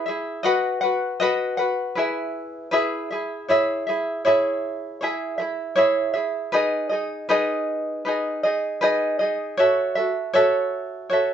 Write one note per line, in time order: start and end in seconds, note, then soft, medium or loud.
0.06 0.45 E4 soft
0.06 0.44 G#4 medium
0.06 0.43 E5 medium
0.43 0.82 F#4 medium
0.43 0.82 B4 medium
0.43 0.82 D#5 medium
0.43 0.80 F#5 medium
0.81 1.20 F#4 medium
0.81 1.21 B4 medium
0.81 1.20 F#5 medium
1.20 1.59 F#4 medium
1.20 1.58 B4 medium
1.20 1.58 D#5 medium
1.20 1.56 F#5 medium
1.57 1.97 F#4 soft
1.57 1.94 B4 medium
1.57 1.96 F#5 medium
1.95 2.72 E4 medium
1.95 2.72 G#4 medium
1.95 2.70 B4 medium
1.95 2.73 E5 medium
2.71 3.10 E4 medium
2.71 3.11 G#4 loud
2.71 3.10 B4 medium
2.71 3.09 E5 medium
3.11 3.48 E4 soft
3.11 3.49 G#4 soft
3.11 3.48 E5 soft
3.48 3.87 E4 medium
3.48 3.87 G#4 medium
3.48 3.86 C#5 medium
3.48 3.85 E5 medium
3.87 4.24 E4 soft
3.87 4.25 G#4 soft
3.87 4.24 E5 medium
4.25 5.01 E4 medium
4.25 5.03 G#4 medium
4.25 5.00 C#5 medium
4.25 5.00 E5 medium
5.01 5.39 E4 medium
5.01 5.38 G#4 medium
5.01 5.03 C#5 medium
5.01 5.37 E5 medium
5.38 5.75 E4 soft
5.38 5.77 E5 medium
5.76 6.15 E4 medium
5.76 6.14 G#4 medium
5.76 6.15 C#5 medium
5.76 6.12 E5 medium
6.14 6.54 E4 soft
6.14 6.53 G#4 soft
6.14 6.53 E5 medium
6.52 6.92 D#4 medium
6.52 6.90 G#4 medium
6.52 6.91 B4 medium
6.52 6.88 D#5 medium
6.89 7.28 D#4 soft
6.89 7.29 G#4 medium
6.89 7.29 D#5 soft
7.29 8.05 D#4 medium
7.29 8.06 G#4 medium
7.29 8.04 B4 medium
7.29 8.07 D#5 medium
8.05 8.44 D#4 medium
8.05 8.44 G#4 medium
8.05 8.43 B4 medium
8.05 8.42 D#5 medium
8.43 8.81 D#4 soft
8.43 8.81 G#4 soft
8.43 8.82 D#5 medium
8.81 9.20 D#4 medium
8.81 9.20 G#4 medium
8.81 9.20 B4 medium
8.81 9.18 D#5 medium
9.19 9.59 D#4 soft
9.19 9.59 G#4 medium
9.19 9.58 D#5 soft
9.57 9.97 F#4 medium
9.57 9.96 A4 medium
9.57 9.96 C#5 medium
9.57 9.94 E5 medium
9.95 10.33 F#4 soft
9.95 10.34 A4 soft
9.95 10.34 E5 medium
10.33 11.10 F#4 medium
10.33 11.11 A4 loud
10.33 11.08 C#5 medium
10.33 11.11 E5 medium
11.10 11.34 F#4 medium
11.10 11.34 A4 medium
11.10 11.34 C#5 medium
11.10 11.34 E5 medium